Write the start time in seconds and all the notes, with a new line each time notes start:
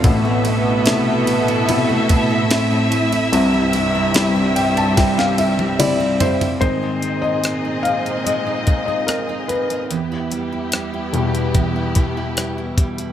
Already playing: D3 A3 C4 F4
0.04 A1 A2 B2 B3 E4 A4 E5, kick, ride
0.25 A3
0.45 E4, ride
0.86 C3 A3 E4, snare, ride
1.27 A3, ride
1.48 E4, ride
1.68 A2 C3 A3 E4, ride
1.89 A3
2.09 E4, kick, ride
2.30 C4
2.50 A2 A3 C4 E4, snare, ride
2.72 C4
2.92 A3, ride
3.12 E4, ride
3.33 C2 G2 C3 G3 G4, ride
3.54 G3
3.73 E4, ride
3.95 C4
4.14 G3 C4 E4, snare, ride
4.36 C4
4.56 G3 G5, ride
4.77 E4 A5, ride
4.97 C3 G3 C4 E4 G5, kick, snare, ride
5.17 G3 F5, snare
5.38 E4 E5, ride
5.59 C4, high tom
5.79 G3 C4 E4 D5, mid tom, ride
6.00 C4
6.20 G3 C5, floor tom, ride
6.41 E4, floor tom, ride
6.61 G#2 A#2 D#3 G#3 C4 D#4 G#4 C5 D#5, kick, closed hi-hat
6.83 D#4
7.02 C4, closed hi-hat
7.22 D#4 D#5
7.44 C4, cross-stick, closed hi-hat
7.65 D#4
7.83 C4 F5, closed hi-hat
8.06 D#4, closed hi-hat
8.24 G#3 D#5, closed hi-hat
8.47 D#4
8.67 C4, kick, closed hi-hat
8.86 D#4 D#5
9.07 C4 A#4, cross-stick, closed hi-hat
9.29 D#4
9.48 C4 B4, closed hi-hat
9.70 D#4, closed hi-hat
9.91 E2 B3 E4 G4, closed hi-hat
10.12 E4
10.32 G3, closed hi-hat
10.52 E4
10.72 G3, cross-stick, closed hi-hat
10.94 E4
11.13 E2 B2 G3, closed hi-hat
11.35 E4, closed hi-hat
11.55 E2, kick, closed hi-hat
11.76 E4
11.95 G3, kick, closed hi-hat
12.17 E4
12.37 G3, cross-stick, closed hi-hat
12.58 E4
12.78 G3, kick, closed hi-hat
12.98 E4, closed hi-hat